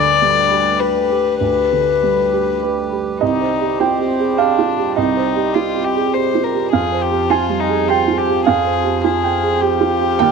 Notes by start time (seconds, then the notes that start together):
Already playing: D2 D3 G3 G4 B4 D5
0.22 G3
0.51 G4
0.80 B4
1.10 G4
1.40 D2 B4
1.72 D3
2.03 G3
2.33 G4
2.63 B4
2.92 G4
3.21 C2 G3 D#4 G4 C5 D#5
3.41 C5
3.61 G4
3.79 C4 F4 G5
4.00 G4
4.19 G#4
4.38 D4 G4 F5
4.59 F4
4.77 G4
4.96 C2 D#4 D#5
5.17 C5
5.36 G4
5.54 F4
5.75 G4
5.84 G4
5.95 G#4
6.14 G4 C5
6.35 F4
6.43 A#4
6.54 G4
6.72 F2 F3 F4 G#4 C5 F5
6.92 C5
7.02 G4
7.11 G4
7.30 F4 G#5
7.50 G3
7.60 D#4
7.69 G#4
7.88 F4 G4 G5
8.08 F4
8.17 G4
8.27 G4
8.46 F2 G#4 F5
8.65 C5
8.84 G4
9.04 F4 G#4
9.23 G5
9.43 G#4
9.61 G4
9.81 F4
10.00 G4
10.19 D#2 G3 A#4 G5